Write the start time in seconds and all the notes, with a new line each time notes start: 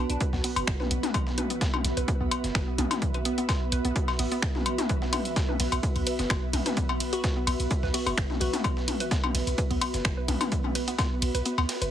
Already playing: B3 F#4 B4 D5
0.02 E5
0.10 B1 D4, closed hi-hat
0.20 B4, kick, closed hi-hat
0.33 D2 B3, snare
0.44 B3, closed hi-hat, open hi-hat
0.56 F#1, closed hi-hat, cowbell
0.67 F#1, finger snap, kick, snare, closed hi-hat
0.80 B4, snare, high tom
0.91 B1 B3, closed hi-hat
1.03 B3, snare, closed hi-hat, high tom
1.14 kick, closed hi-hat, cowbell
1.27 snare
1.38 B4, closed hi-hat, high tom
1.50 B3, closed hi-hat
1.61 B3, kick, snare, closed hi-hat
1.74 high tom, cowbell
1.84 B1, snare, closed hi-hat
1.97 B1 B4, closed hi-hat
2.08 B3, kick, closed hi-hat
2.20 D2 B3
2.31 closed hi-hat, cowbell
2.44 F#1, snare, closed hi-hat
2.55 F#1 B4, finger snap, kick, snare, closed hi-hat
2.68 B3
2.78 B1 B3, closed hi-hat, mid tom
2.91 snare, closed hi-hat, high tom, cowbell
3.02 kick, closed hi-hat
3.14 B4, closed hi-hat
3.25 B3, closed hi-hat
3.38 B3, closed hi-hat
3.49 kick, snare, closed hi-hat, cowbell
3.72 B1 B4, closed hi-hat
3.85 B1 B3, closed hi-hat
3.96 B3, kick, closed hi-hat
4.08 snare, cowbell
4.19 A1 B3, closed hi-hat, open hi-hat
4.32 B3, closed hi-hat
4.42 finger snap, kick, snare, closed hi-hat
4.55 F#4, snare, high tom
4.66 closed hi-hat, cowbell
4.78 F#4, snare, closed hi-hat, high tom
4.89 B4, kick, closed hi-hat
5.02 B3, snare
5.13 B3, closed hi-hat, high tom, ride, cowbell
5.25 closed hi-hat
5.36 kick, snare, closed hi-hat
5.49 B4, high tom
5.60 B1 B3, snare, closed hi-hat, ride
5.72 B1 B3, closed hi-hat, cowbell
5.83 kick, closed hi-hat
5.96 D2, ride
6.07 B4, closed hi-hat, ride
6.19 F#1 B3, snare, closed hi-hat
6.30 F#1 B3, finger snap, kick, snare, closed hi-hat, cowbell
6.53 B1, closed hi-hat, mid tom, ride
6.66 B4, snare, closed hi-hat, high tom
6.77 B3, kick, closed hi-hat
6.89 B3, cowbell
7.00 closed hi-hat, ride
7.13 F#4, closed hi-hat
7.24 B4, kick, snare, closed hi-hat
7.36 B3
7.47 B1 B3, closed hi-hat, ride, cowbell
7.60 B1, closed hi-hat
7.71 kick, closed hi-hat
7.83 D2 B4, snare
7.94 B3 F#4, closed hi-hat, open hi-hat, ride
8.06 F#1 B3 F#4, closed hi-hat, cowbell
8.17 F#1, finger snap, kick, snare, closed hi-hat, ride
8.30 snare, high tom
8.40 B1 F#4 B4, closed hi-hat, ride
8.53 B3, snare, closed hi-hat, high tom
8.64 B3, kick, closed hi-hat, cowbell
8.77 snare
8.88 closed hi-hat, high tom, ride
9.00 B4, closed hi-hat
9.11 B3, kick, snare, closed hi-hat
9.24 B3, high tom, cowbell
9.35 B1, snare, closed hi-hat, ride
9.47 B1, closed hi-hat
9.58 B4, kick, closed hi-hat
9.71 D2 B3, ride
9.81 B3, closed hi-hat, ride, cowbell
9.94 F#1, snare, closed hi-hat
10.05 F#1, finger snap, kick, snare, closed hi-hat
10.17 B4
10.28 B1 B3, closed hi-hat, mid tom, ride
10.41 B3, snare, closed hi-hat, high tom, cowbell
10.52 kick, closed hi-hat
10.64 mid tom
10.75 B4, closed hi-hat, ride
10.88 B3, closed hi-hat
10.98 B3, kick, snare, closed hi-hat, cowbell
11.22 B1, closed hi-hat, ride
11.35 B1 B4, closed hi-hat
11.45 B3, closed hi-hat
11.58 D2 B3, snare, cowbell
11.69 snare, closed hi-hat, ride
11.81 F#1 B4, closed hi-hat